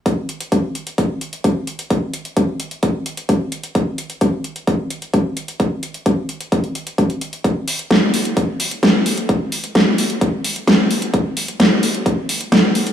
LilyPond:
\new DrumStaff \with { instrumentName = "Drums" } \drummode { \time 4/4 \tempo 4 = 130 <hh bd>8 hh16 hh16 <hh bd>8 hh16 hh16 <hh bd>8 hh16 hh16 <hh bd>8 hh16 hh16 | <hh bd>8 hh16 hh16 <hh bd>8 hh16 hh16 <hh bd>8 hh16 hh16 <hh bd>8 hh16 hh16 | <hh bd>8 hh16 hh16 <hh bd>8 hh16 hh16 <hh bd>8 hh16 hh16 <hh bd>8 hh16 hh16 | <hh bd>8 hh16 hh16 <hh bd>8 hh16 hh16 <hh bd>16 hh16 hh16 hh16 <hh bd>16 hh16 hh16 hh16 |
<hh bd>8 hho16 hh16 <hh bd sn>8 hho16 hh16 <hh bd>8 hho16 hh16 <hh bd sn>8 hho16 hh16 | <hh bd>8 hho16 hh16 <hh bd sn>8 hho16 hh16 <hh bd>8 hho16 hh16 <hh bd sn>8 hho16 hh16 | <hh bd>8 hho16 hh16 <hh bd sn>8 hho16 hh16 <hh bd>8 hho16 hh16 <hh bd sn>8 hho16 hh16 | }